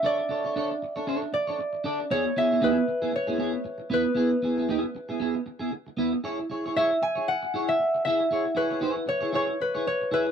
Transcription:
X:1
M:4/4
L:1/16
Q:"Swing 16ths" 1/4=116
K:C#phr
V:1 name="Harp"
d8 z2 d6 | c2 e2 B4 c6 B2- | B8- B2 z6 | z4 e2 g2 f3 e3 e2- |
e2 B4 c2 c2 B2 c2 B2 |]
V:2 name="Clean electric guitar"
[DAc] z [DAc] [DAc] [DAc] z2 [DAc] [DAc]2 z [DAc] z2 [DAd] z | [B,EG] z [B,EG] [B,EG] [B,EG]2 z [B,EG] z [B,EG] [B,EG] z3 [B,EB] z | [B,EG] z [B,EG] [B,EG] [B,EG]2 z [B,EG] [B,EG] z2 [B,EG] z2 [B,EB] z | [EGc] z [EGc] [EGc] [EGc] z2 [EGc] z2 [EGc] z3 [EGe] z |
[EGc] z [EGc] [EGc] [EGc]2 z [EGc] [EGc] z2 [EGc] z2 [EGe] z |]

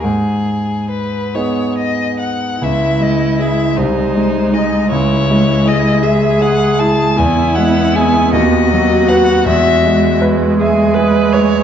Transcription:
X:1
M:6/8
L:1/8
Q:3/8=53
K:G#m
V:1 name="Violin"
G2 B c d f | [K:C#m] e d e ^B2 d | c2 d e f a | g f g d2 f |
e2 z4 |]
V:2 name="Viola"
z6 | [K:C#m] E3 D3 | E3 G3 | E3 F3- |
F3 G B c |]
V:3 name="Grand piano"
G,,3 [B,DG]3 | [K:C#m] C,, G, [EG] ^B,,, G, [DG] | C,, G, G e G E | E,, G, [EG] D,, F, [FB] |
E,, G, B e G B |]
V:4 name="Cello" clef=bass
z6 | [K:C#m] G,6- | G,6 | B,6 |
G,6 |]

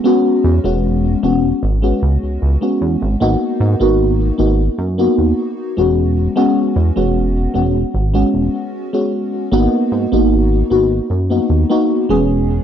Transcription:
X:1
M:4/4
L:1/16
Q:1/4=76
K:G#m
V:1 name="FM electric piano"
[G,B,CF]3 [G,B,CF]3 [G,B,CF] z2 [G,B,CF]4 [G,B,CF]3 | [A,B,DF]3 [A,B,DF]3 [A,B,DF] z2 [A,B,DF]4 [G,B,CF]3 | [G,B,CF]3 [G,B,CF]3 [G,B,CF] z2 [G,B,CF]4 [G,B,CF]3 | [A,B,DF]3 [A,B,DF]3 [A,B,DF] z2 [A,B,DF]2 [A,B,DF]2 [G,B,CG]3 |]
V:2 name="Analog synth bass" clef=bass
z2 E,, E,,,3 E,,, z G,,, z C,, C,, C,, z E,, G,,, | G,,, z G,, G,,,3 G,,, z F,, z D,, z2 E,,,3 | z2 E,, E,,,3 E,,, z G,,, z E,,, z4 z | G,,, z G,, G,,,3 G,,, z F,, z D,, z2 E,,,3 |]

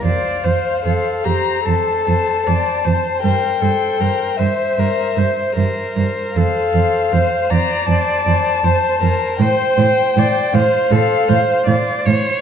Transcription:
X:1
M:4/4
L:1/8
Q:1/4=78
K:F
V:1 name="Violin"
f3 b a4 | g3 e4 z | f3 b a4 | g3 f4 z |]
V:2 name="Viola"
d c A G A2 d c | B A B c B c B2 | A2 c d3 c B | c2 d c A c d _d |]
V:3 name="Violin"
c c c c c c c c | c c c c c c c c | c c c c c c c c | c c c c c c c c |]
V:4 name="Cello" clef=bass
F,, F,, F,, F,, F,, F,, F,, F,, | G,, G,, G,, G,, G,, G,, G,, G,, | F,, F,, F,, F,, F,, F,, F,, F,, | A,, A,, A,, A,, A,, A,, A,, A,, |]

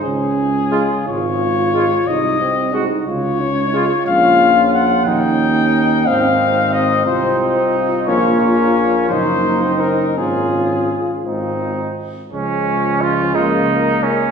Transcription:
X:1
M:6/8
L:1/16
Q:3/8=59
K:Dblyd
V:1 name="Trumpet"
A6 d6 | e4 z2 d6 | [K:Db] f4 g2 =g6 | f4 e2 c2 z4 |
d2 d4 c4 B2 | A6 z6 | d6 B6 |]
V:2 name="Trombone"
D6 F6 | E2 C2 E2 F2 D2 F2- | [K:Db] F4 z2 E6 | C6 F6- |
F6 E6 | F8- F z3 | F,6 D,6 |]
V:3 name="Trumpet"
z4 F z4 z F z | z4 _G z4 z F z | [K:Db] F6 E6 | E6 E6 |
D6 E6 | F4 z2 E4 z2 | D4 F2 E4 D2 |]
V:4 name="French horn"
z4 A, z4 z A, z | z4 A, z4 z A, z | [K:Db] D6 D6 | C6 C6 |
B,6 B,3 C3 | D4 z2 C4 z2 | A,6 B,6 |]
V:5 name="Tuba" clef=bass
D,,6 A,,,6 | C,,6 D,,6 | [K:Db] B,,,6 E,,6 | A,,,6 C,,6 |
B,,,6 G,,,6 | A,,,4 z2 A,,,4 z2 | D,,12 |]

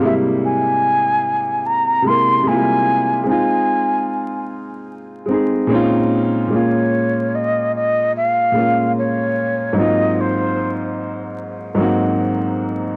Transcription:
X:1
M:4/4
L:1/16
Q:"Swing 16ths" 1/4=74
K:Bbm
V:1 name="Flute"
=e2 a6 b2 c'2 a4 | a6 z8 z2 | d4 e2 e2 f4 d4 | e2 c4 z8 z2 |]
V:2 name="Upright piano"
[C,=G,A,B,=E]6 z4 [C,A,B,EB]2 [C,G,A,B,EF]3 z | [A,CEF]6 z4 [A,CEA]2 [B,,A,CDEF]3 z | [B,,A,B,DF]6 z4 [B,,A,B,DF]4 z2 | [A,,G,B,CEF]6 z4 [A,,G,B,CEG]4 z2 |]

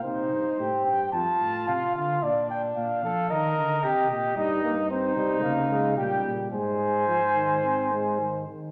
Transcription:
X:1
M:4/4
L:1/8
Q:1/4=110
K:Cm
V:1 name="Cornet"
c3 g =a2 f f | d g f2 e2 e2 | [K:Ab] e2 c2 f2 g z | a6- a z |]
V:2 name="Flugelhorn"
E2 G2 F4 | D3 =A B2 G G | [K:Ab] E2 E4 G z | c6- c z |]
V:3 name="Trombone" clef=bass
z8 | z8 | [K:Ab] G, B, C G, B, A, G,2 | A,2 F, E, C A, E, E, |]
V:4 name="Tuba" clef=bass
C, G,, =A,, G,, F,, A,, C, D, | B,,2 B,, F, E, D, C, B,, | [K:Ab] G,,3 C, D,2 B,, B,, | A,,6- A,, z |]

